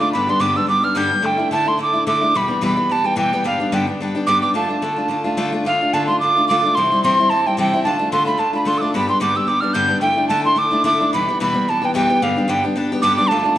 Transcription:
0.00 A3 D4 F4 D6
0.13 G2 D3 G3 B3 D4 G4 B5
0.27 G3 B3 D4 G4 C6
0.40 G2 D3 G3 B3 D4 G4 D6
0.55 G3 B3 D4 G4 E6
0.67 G3 B3 D4 G4 D6
0.82 G3 B3 D4 G4 F6
0.95 G2 D3 G3 B3 D4 G4 G6
1.11 G3 B3 D4 G4
1.22 D3 A3 D4 E4 G5
1.38 A3 D4 E4
1.51 D3 A3 D4 E4 A5
1.66 A3 D4 E4 C6
1.78 D3 A3 D4 E4
1.82 D6
1.93 A3 D4 E4
2.07 D3 A3 D4 E4 D6
2.21 A3 D4 E4
2.34 E2 B2 E3 G3 B3 G4 B5
2.48 E3 G3 B3 G4
2.61 E2 B2 E3 G3 B3 G4
2.65 B5
2.75 E3 G3 B3 G4
2.89 E3 G3 B3 G4 A5
3.04 E3 G3 B3 G4 G5
3.16 E2 B2 E3 G3 B3 G4 G5
3.33 E3 G3 B3 G4
3.44 G2 D3 G3 B3 D4 G4 F5
3.60 G3 B3 D4 G4
3.72 G2 D3 G3 B3 D4 G4 G5
3.87 G3 B3 D4 G4
4.00 G3 B3 D4 G4
4.15 G3 B3 D4 G4
4.26 G2 D3 G3 B3 D4 G4 D6
4.42 G3 B3 D4 G4 D6
4.54 D3 A3 D4 F4 A5
4.68 A3 D4 F4
4.82 D3 A3 D4 F4
4.96 A3 D4 F4
5.08 D3 A3 D4 F4
5.24 A3 D4 F4
5.37 D3 A3 D4 F4
5.52 A3 D4 F4
5.65 D3 A3 D4 F4 F5
5.81 A3 D4 F4
5.93 D3 A3 D4 F4 A5
6.07 A3 D4 F4 C6
6.20 D3 A3 D4 F4 D6
6.37 A3 D4 F4
6.48 D3 A3 D4 F4 D6
6.63 A3 D4 F4
6.75 C3 E3 G3 C4 E4 C6
6.92 G3 C4 E4
7.03 C3 E3 G3 C4 E4 C6
7.19 G3 C4 E4
7.29 E3 G3 C4 E4 A5
7.46 G3 C4 E4 G5
7.57 C3 E3 G3 C4 E4 G5
7.73 G3 C4 E4
7.83 D3 A3 D4 F4 A5
7.99 A3 D4 F4
8.12 D3 A3 D4 F4 C6
8.25 A3 D4 F4 B5
8.38 D3 A3 D4 F4 A5
8.53 A3 D4 F4 B5
8.65 D3 A3 D4 F4 C6
8.78 F4 D6 E6
8.82 A3 D4
8.94 G2 D3 G3 B3 D4 G4 B5
9.07 G3 B3 D4 G4 C6
9.20 G2 D3 G3 B3 D4 G4 D6
9.35 G3 B3 D4 G4 E6
9.45 G3 B3 D6 E6
9.49 D4 G4
9.60 G3 B3 D4 G4 F6
9.73 G2 D3 G3 B3 D4 G4 G6
9.87 G3 B3 D4 G4
10.01 D3 A3 D4 E4 G5
10.16 A3 D4 E4
10.28 D3 A3 D4 E4 A5
10.44 A3 D4 E4 C6
10.55 D3 A3 D4 E4 D6
10.71 A3 D4 E4
10.84 D3 A3 D4 E4 D6
11.00 A3 D4 E4
11.13 E2 B2 E3 G3 B3 G4 B5
11.28 E3 G3 B3 G4
11.40 E2 B2 E3 G3 B3 G4 B5
11.54 E3 G3 B3 G4
11.68 E3 G3 B3 G4 A5
11.82 E3 G3 B3 G4 G5
11.94 E2 B2 E3 G3 B3 G4 G5
12.09 E3 G3 B3 G4
12.22 G2 D3 G3 B3 D4 G4 F5
12.36 G3 B3 D4 G4
12.48 G2 D3 G3 B3 D4 G4 G5
12.64 G3 B3 D4 G4
12.76 G3 B3 D4 G4
12.92 G3 B3 D4 G4
13.02 G2 D3 G3 B3 D4 G4 D6
13.16 G3 B3 D4 G4 D6
13.28 D3 A3 D4 F4 A5
13.43 A3 D4 F4

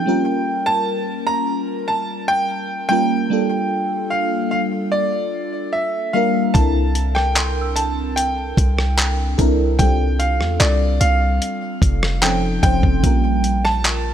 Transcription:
Already playing: G5
0.06 G3 A#3 C#4 F4 A#4
0.66 A5
1.27 A#5
1.88 A5
2.28 G5
2.89 G3 A#3 C#4 F4 A#4 G5
3.30 G3 A#3 D4 F4 A4
4.10 F5
4.51 F5
4.92 D5
5.73 E5
6.13 G3 A#3 D4 F4 A#4 F5
6.54 C2 C4 D4 E4 A4 A#4 A5, kick, closed hi-hat
6.95 closed hi-hat
7.15 G5, cross-stick
7.36 C6, clap, closed hi-hat
7.61 E6
7.76 A5, closed hi-hat
8.16 G5, closed hi-hat
8.57 C2, kick, closed hi-hat
8.79 cross-stick
8.98 clap, closed hi-hat
9.38 C2 C4 D4 E4 A4 A#4, kick, closed hi-hat
9.79 C2 G3 C4 D4 F4 A4 G5, kick, closed hi-hat
10.19 F5, closed hi-hat
10.40 E2, cross-stick
10.60 C2 D5, clap, closed hi-hat
11.01 C2 F5, closed hi-hat
11.42 closed hi-hat
11.82 F1, kick, closed hi-hat
12.03 cross-stick
12.22 F3 C4 C#4 D#4 A4 G5, clap, closed hi-hat
12.62 F1 F3 C4 C#4 D#4 C5 G5, kick, closed hi-hat
12.83 F1, kick
13.03 A#1 G3 A#3 C#4 F4 A#4, kick, closed hi-hat
13.44 closed hi-hat
13.65 A5, cross-stick
13.85 clap, closed hi-hat

